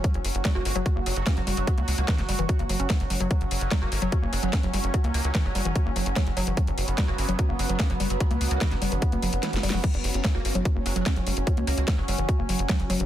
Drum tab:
CC |------------------------------------------------|------------------------------------------------|------------------------------------------------|------------------------------------------------|
HH |x--x--o--x--x-----o--x--x-----o--x--x--x--o--x--|x--x--o--x--x--x--o--x--x--x--o--x--x--x--o--x--|x--x--o--x--x-----o--x--x-----o--x--x--x--o--x--|x--x--o--x--x-----o--x--x-----o--x--x--x--o--x--|
SD |------------o-----------------------o-----------|------------o--o--------------------o-----------|------------o-----------------------o-----------|------------o-----------------------o-----------|
BD |o-----------o-----------o-----------o-----------|o-----------o-----------o-----------o-----------|o-----------o-----------o-----------o-----------|o-----------o-----------o-----------o-----------|

CC |------------------------------------------------|------------------------------------------------|x-----------------------------------------------|------------------------------------------------|
HH |x--x--o--x--x-----o--x--x-----o--x--x--x--o--x--|x--x--o--x--x--x--o--x--x--x--o--x--x--x--o--o--|x--x--o--x--x-----o--x--x-----o--x--x--x--o--x--|x--x--o--x--x-----o--x--x-----o--x--x--x--o--x--|
SD |------------o-----------------------o-----------|------------o--o--------------------o---o---o---|------------o-----------------------o-----------|------------o-----------------------o-----------|
BD |o-----------o-----------o-----------o-----------|o-----------o-----------o-----------------------|o-----------o-----------o-----------o-----------|o-----------o-----------o-----------o-----------|